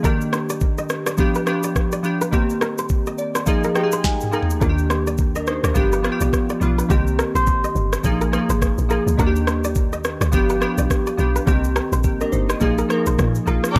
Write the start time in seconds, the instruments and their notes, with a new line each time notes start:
0.03 synth keys D#3 A#3 D4 G4, kora A#4, kick, shaker
0.21 shaker
0.33 kora C5, cross-stick, shaker
0.49 kora D5, shaker
0.61 kick, shaker
0.78 kora D#5, shaker
0.89 cross-stick, shaker
1.06 kora D5, cross-stick, shaker
1.17 synth keys F3 B3 D4 G4, kick, shaker
1.35 kora B4, shaker
1.46 synth keys F3 B3 D4 G4, cross-stick, shaker
1.63 kora D5, shaker
1.76 kick, cross-stick, shaker
1.92 kora D5, shaker
2.03 synth keys F3 B3 D4 G4, shaker
2.21 kora B4, shaker
2.31 synth keys D#3 A#3 C4 G4, kora G4, kick, shaker
2.50 shaker
2.61 kora A#4, cross-stick, shaker
2.78 kora C5, shaker
2.89 kick, shaker
3.07 kora D#5, shaker
3.18 synth keys D5, shaker
3.35 kora C5, cross-stick, shaker
3.46 synth keys F3 A#3 D#4 G#4 D#5, kick, shaker
3.64 kora A#4, shaker
3.74 synth keys F3 A#3 D#4 G4 G5, cross-stick, shaker
3.83 synth keys G#4
3.92 kora C5, shaker
4.04 synth keys G#5, kick, snare, shaker
4.21 mid tom, shaker
4.31 synth keys F3 A#3 D#4 G#4, kora A#4, shaker
4.42 floor tom
4.50 shaker
4.60 log drum bass D#2, synth keys D#3 A#3 D4 F4, kora A#4, kick, shaker
4.69 synth keys G4
4.79 shaker
4.90 kora C5, cross-stick, shaker
5.07 kora D5, shaker
5.18 kick, shaker
5.35 synth keys D4 A#4, kora D#5, shaker
5.47 synth keys D#4 C5, cross-stick, shaker
5.64 log drum bass D2, synth keys D4 A#4, kora D5, cross-stick, shaker
5.74 log drum bass G1, synth keys F3 B3 D4 G4, kick, shaker
5.92 kora B4, shaker
6.03 synth keys F3 B3 D4 F4, cross-stick, shaker
6.12 synth keys G4
6.21 log drum bass B1, kora D5, shaker
6.33 kick, cross-stick, shaker
6.49 kora D5, shaker
6.60 log drum bass B1, synth keys F3 B3 D4 F4, shaker
6.78 kora B4, shaker
6.89 log drum bass C2, synth keys D#3 A#3 C4 G4, kora G4, kick, shaker
7.07 shaker
7.19 kora A#4, cross-stick, shaker
7.35 log drum bass A#1, kora C5, shaker
7.47 kick, shaker
7.64 kora D#5, shaker
7.75 log drum bass G1, shaker
7.93 kora C5, cross-stick, shaker
8.03 log drum bass A#1, synth keys F3 A#3 D#4 G#4, kick, shaker
8.21 kora A#4, shaker
8.32 synth keys F3 A#3 D#4 G#4, cross-stick, shaker
8.49 log drum bass G#1, kora C5, shaker
8.62 kick, cross-stick, shaker
8.78 log drum bass A#1, shaker
8.89 synth keys F3 A#3 D#4 G#4, kora A#4, shaker
9.07 log drum bass D2, shaker
9.17 log drum bass D#2, synth keys D#3 A#3 D4 F#4, kora A#4, kick, shaker
9.26 synth keys G4
9.36 shaker
9.47 kora C5, cross-stick, shaker
9.64 kora D5, shaker
9.75 kick, shaker
9.93 kora D#5, shaker
10.04 cross-stick, shaker
10.21 log drum bass D2, kora D5, cross-stick, shaker
10.32 log drum bass G1, synth keys F3 B3 D4 G4, kick, shaker
10.50 kora B4, shaker
10.60 synth keys F3 B3 D4 G4, cross-stick, shaker
10.78 log drum bass B1, kora D5, shaker
10.90 kick, cross-stick, shaker
11.07 kora D5, shaker
11.17 log drum bass B1, synth keys F3 B3 D4 G4, shaker
11.36 kora B4, shaker
11.46 log drum bass C2, synth keys D3 A#3 C4 G4, kora G4, kick, shaker
11.52 synth keys D#3
11.64 shaker
11.76 kora A#4, cross-stick, shaker
11.92 log drum bass A#1, kora C5, shaker
12.04 synth keys A#3 G4, kick, shaker
12.21 synth keys D4 A#4, kora D#5, shaker
12.32 log drum bass G1, synth keys D#4 C5, shaker
12.49 synth keys G4 D#5, kora C5, cross-stick, shaker
12.60 log drum bass A#1, synth keys F3 A#3 D#4 G#4, kick, shaker
12.78 kora A#4, shaker
12.89 synth keys F3 A#3 D#4 A#4, cross-stick, shaker
13.06 log drum bass A#1, kora C5, shaker
13.19 log drum bass A#2, kick, cross-stick, shaker
13.35 shaker
13.46 log drum bass A#1, synth keys F3 A#3 D#4 F4, kora A#4, shaker
13.64 cross-stick, shaker
13.74 log drum bass D#2, synth keys D#3 A#3 D4, string section A#4 D5 G5 D6, kick, low conga, shaker